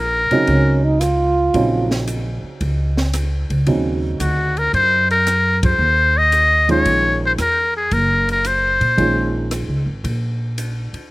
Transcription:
Already playing: upright bass A#1, muted trumpet A#4
0.31 upright piano C#3 F#3 C4 D#4, muted upright bass stroke, ride
0.47 upright bass C#2, trombone C#4, kick, ride
0.84 trombone D#4
1.00 trombone F4, cross-stick, hi-hat pedal, ride
1.54 upright bass A#1, upright piano C#3 F#3 C4 D#4, kick, ride
1.91 snare
2.07 hi-hat pedal, ride
2.43 muted upright bass stroke
2.61 upright bass C#2, kick, ride
2.97 snare
3.13 cross-stick, hi-hat pedal, ride
3.50 upright bass C#2, ride
3.67 upright bass D#2, upright piano C#3 F#3 C4 D#4, kick, ride
4.20 upright bass D2, muted trumpet F#4, hi-hat pedal, ride
4.57 muted trumpet A#4, ride
4.73 upright bass F#2, muted trumpet C5, kick, ride
5.11 muted trumpet A#4, ride
5.27 cross-stick, hi-hat pedal, ride
5.63 muted trumpet C5, kick, ride
5.79 upright bass D#2
6.18 muted trumpet D#5
6.32 hi-hat pedal, ride
6.69 upright piano D#3 G#3 C#4 F4, muted trumpet C#5, ride
6.85 upright bass A#1, kick, ride
7.25 muted trumpet C5
7.38 upright bass E2, muted trumpet A#4, cross-stick, hi-hat pedal, ride
7.77 muted trumpet G#4
7.91 upright bass F#1, muted trumpet A#4, kick, ride
8.29 muted trumpet A#4, ride
8.45 muted trumpet C5, hi-hat pedal, ride
8.80 upright bass A#2, ride
8.97 upright bass A#1, upright piano D#3 G#3 C#4 F4, kick, ride
9.51 cross-stick, hi-hat pedal, ride
9.68 upright bass C#2
9.86 upright bass G#1
10.04 upright bass A#1, kick, ride
10.58 hi-hat pedal, ride
10.93 muted upright bass stroke, ride

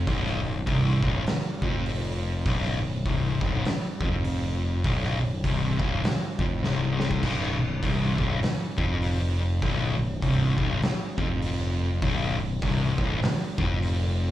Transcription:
0.07 picked electric bass B0, distorted electric guitar B1, kick, open hi-hat
0.26 snare
0.42 picked electric bass B0, distorted electric guitar B1
0.67 picked electric bass C1, distorted electric guitar C2, kick, open hi-hat
1.03 picked electric bass B0, distorted electric guitar B1, kick
1.27 muted picked electric bass stroke, muted distorted electric guitar stroke, snare, open hi-hat
1.62 picked electric bass F1, distorted electric guitar F2, kick
1.86 open hi-hat
2.46 picked electric bass B0, distorted electric guitar B1, kick, open hi-hat
2.65 snare
2.82 picked electric bass B0, distorted electric guitar B1
3.06 picked electric bass C1, distorted electric guitar C2, kick, open hi-hat
3.41 picked electric bass B0, distorted electric guitar B1, kick
3.65 muted picked electric bass stroke, muted distorted electric guitar stroke, snare, open hi-hat
4.01 picked electric bass F1, distorted electric guitar F2, kick
4.25 open hi-hat
4.84 picked electric bass B0, distorted electric guitar B1, kick, open hi-hat
5.04 snare
5.19 picked electric bass B0, distorted electric guitar B1
5.44 picked electric bass C1, distorted electric guitar C2, kick, open hi-hat
5.79 picked electric bass B0, distorted electric guitar B1, kick
6.04 muted picked electric bass stroke, muted distorted electric guitar stroke, snare, open hi-hat
6.39 picked electric bass F1, distorted electric guitar F2, kick
6.63 picked electric bass C1, distorted electric guitar C2, snare
7.00 snare
7.11 kick
7.23 picked electric bass B0, distorted electric guitar B1, kick, crash
7.59 picked electric bass B0, distorted electric guitar B1
7.83 picked electric bass C1, distorted electric guitar C2, kick, open hi-hat
8.18 picked electric bass B0, distorted electric guitar B1, kick
8.42 muted distorted electric guitar stroke, muted picked electric bass stroke, snare, open hi-hat
8.77 picked electric bass F1, distorted electric guitar F2, kick
9.02 open hi-hat
9.62 picked electric bass B0, distorted electric guitar B1, kick, open hi-hat
9.98 picked electric bass B0, distorted electric guitar B1
10.22 picked electric bass C1, distorted electric guitar C2, kick, open hi-hat
10.58 picked electric bass B0, distorted electric guitar B1, kick
10.82 muted distorted electric guitar stroke, muted picked electric bass stroke, snare, open hi-hat
11.18 picked electric bass F1, distorted electric guitar F2, kick
11.42 open hi-hat
12.02 picked electric bass B0, distorted electric guitar B1, kick, open hi-hat
12.38 picked electric bass B0, distorted electric guitar B1
12.62 picked electric bass C1, distorted electric guitar C2, kick, open hi-hat
12.98 picked electric bass B0, distorted electric guitar B1, kick
13.22 muted distorted electric guitar stroke, muted picked electric bass stroke, snare, open hi-hat
13.58 picked electric bass F1, distorted electric guitar F2, kick
13.83 open hi-hat

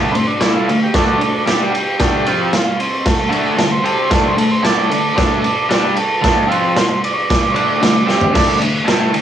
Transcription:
Already playing: overdriven electric guitar D3 A3 D4
0.11 overdriven electric guitar D3 A3, transistor combo organ B3 C4, ride
0.27 transistor combo organ D4
0.40 overdriven electric guitar A3 E4 A4, snare, ride
0.54 transistor combo organ F4
0.68 overdriven electric guitar D3 A3, ride
0.83 transistor combo organ G4
0.94 overdriven electric guitar D3 A3 D4, transistor combo organ A3 D4, kick, snare, ride
1.20 muted overdriven electric guitar stroke, ride
1.46 overdriven electric guitar G3 D4 G4, snare, ride
1.70 transistor combo organ F#4, muted overdriven electric guitar stroke
1.75 transistor combo organ G4, ride
2.00 overdriven electric guitar D3 A3 D4, kick, snare, ride
2.26 overdriven electric guitar F3 C4 F4, ride
2.53 transistor combo organ F4, snare, ride
2.80 transistor combo organ C4, ride
3.06 transistor combo organ A3, kick, snare, ride
3.30 overdriven electric guitar D3 A3 D4, ride
3.58 overdriven electric guitar D3 A3, transistor combo organ A4, snare, ride
3.72 transistor combo organ C5
3.84 overdriven electric guitar C4 G4 C5, transistor combo organ A4, ride
3.99 transistor combo organ C5
4.10 overdriven electric guitar D3 A3 D4, transistor combo organ A4, kick, snare, ride
4.27 transistor combo organ C5
4.36 overdriven electric guitar D3 A3, transistor combo organ A4, ride
4.51 transistor combo organ C5
4.63 overdriven electric guitar A3 E4 A4, transistor combo organ A4 D5, snare, ride
4.90 overdriven electric guitar D3 A3, ride
5.16 overdriven electric guitar D3 A3 D4, kick, snare, ride
5.44 muted overdriven electric guitar stroke, ride
5.69 overdriven electric guitar G3 D4 G4, snare, ride
5.95 transistor combo organ A4, muted overdriven electric guitar stroke, ride
6.21 overdriven electric guitar D3 A3 D4, kick, snare, ride
6.47 overdriven electric guitar F3 C4 F4
6.51 transistor combo organ C5, ride
6.76 snare, ride
7.04 transistor combo organ D5, ride
7.13 transistor combo organ C#5
7.18 transistor combo organ D5
7.30 kick, snare, ride
7.52 overdriven electric guitar D3 A3, transistor combo organ C#5
7.56 overdriven electric guitar D4, transistor combo organ D5, ride
7.81 overdriven electric guitar D3 A3, snare, ride
8.06 overdriven electric guitar C4 G4 C5, snare
8.21 floor tom
8.33 overdriven electric guitar D3 A3 D4, kick, snare, crash
8.59 overdriven electric guitar D3 A3, ride
8.85 overdriven electric guitar A3 E4 A4, snare, ride
9.12 overdriven electric guitar D3 A3, ride

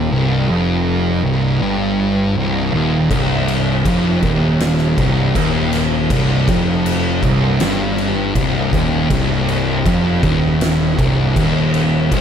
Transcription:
Already playing: distorted electric guitar D#2
0.11 picked electric bass C1, distorted electric guitar C2
0.48 picked electric bass F1, distorted electric guitar F2
1.24 picked electric bass C1, distorted electric guitar C2
1.61 picked electric bass G1, distorted electric guitar G2
2.36 picked electric bass C1, distorted electric guitar C2
2.73 picked electric bass D#1, distorted electric guitar D#2
3.10 picked electric bass C1, distorted electric guitar C2, kick, crash
3.48 crash
3.85 picked electric bass F1, distorted electric guitar F2, kick, crash
4.23 picked electric bass D#1, distorted electric guitar D#2, kick, crash
4.60 snare, crash
4.98 picked electric bass C1, distorted electric guitar C2, kick, crash
5.35 picked electric bass D#1, distorted electric guitar D#2, kick, crash
5.73 snare, crash
6.10 picked electric bass C1, distorted electric guitar C2, kick, crash
6.48 picked electric bass F1, distorted electric guitar F2, kick, crash
6.86 crash
7.23 picked electric bass C1, distorted electric guitar C2, kick, crash
7.60 picked electric bass G1, distorted electric guitar G2, snare, crash
7.98 crash
8.35 picked electric bass C1, distorted electric guitar C2, kick, crash
8.73 picked electric bass D#1, distorted electric guitar D#2, kick, crash
9.10 picked electric bass C1, distorted electric guitar C2, kick, crash
9.49 crash
9.86 picked electric bass F1, distorted electric guitar F2, kick, crash
10.23 picked electric bass D#1, distorted electric guitar D#2, kick, crash
10.61 snare, crash
10.99 picked electric bass C1, distorted electric guitar C2, kick, crash
11.36 picked electric bass D#1, distorted electric guitar D#2, kick, crash
11.74 crash
12.12 picked electric bass C1, distorted electric guitar C2, kick, crash

